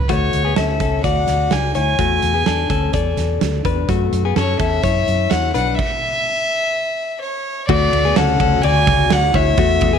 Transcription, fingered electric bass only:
0.09 D2
0.34 D2
0.57 D2
0.80 C#2
1.04 D2
1.28 D2
1.52 C#2
1.76 D2
1.99 E2
2.23 E2
2.47 E2
2.70 D2
2.94 E2
3.18 E2
3.42 D2
3.65 E2
3.89 F#2
4.13 F#2
4.36 F#2
4.60 E2
4.84 F#2
5.08 F#2
5.31 E2
5.55 B1
7.69 D2
7.93 D2
8.17 D2
8.40 D2
8.64 D2
8.87 C#2
9.11 D2
9.34 D2
9.58 E2
9.82 E2

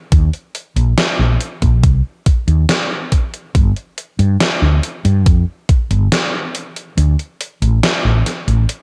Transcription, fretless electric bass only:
0.12 D#2
0.76 A#1
1.19 A#1
1.62 A#1
1.84 C2
2.48 D#2
3.55 G1
4.19 G2
4.62 D2
5.05 G2
5.26 F2
5.91 G1
6.97 D2
7.62 A1
8.05 A1
8.48 A1

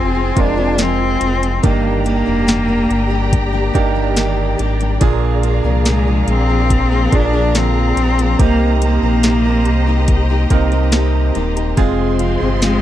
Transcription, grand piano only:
Already playing: G#3 C4 F4 G#4
0.36 G#3 C4 F4 A#4
1.63 G2 A#3 D4 D#4 G4
3.74 A#3 D4 D#4 G4
5.01 A#2 A#3 D4 F4 G#4
7.12 A#3 D4 F4 G#4
8.39 C3 A#3 C4 D#4 G4
10.50 A#3 C4 D#4 A#4
11.77 G#3 C4 F4 G#4

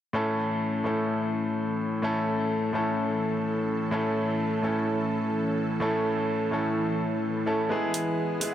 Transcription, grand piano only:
0.13 A2 A3 C#4 E4 A4
0.84 A2 A3 C#4 E4 A4
2.02 A2 A3 C#4 E4 A4
2.73 A2 A3 C#4 E4 A4
3.91 A2 A3 C#4 E4 A4
4.62 A2 A3 C#4 E4 A4
5.80 A2 A3 C#4 E4 A4
6.51 A2 A3 C#4 E4 A4
7.46 A3 C#4 E4 A4
7.69 G#3 B3 E4 G#4
8.40 G#3 B3 E4 G#4

